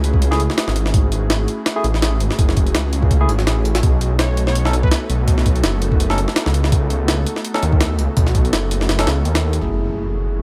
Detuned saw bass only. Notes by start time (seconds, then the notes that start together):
Already playing: C#2
0.67 G#1
1.84 A1
2.20 G#1
2.39 F#1
2.74 C#2
3.29 G#1
3.47 A1
3.83 B1
5.09 B1
5.64 F#1
6.46 C#2
7.63 D#2
7.99 C#2
8.17 B1
8.53 F#1
9.07 C#2
9.25 D#2
9.61 F#1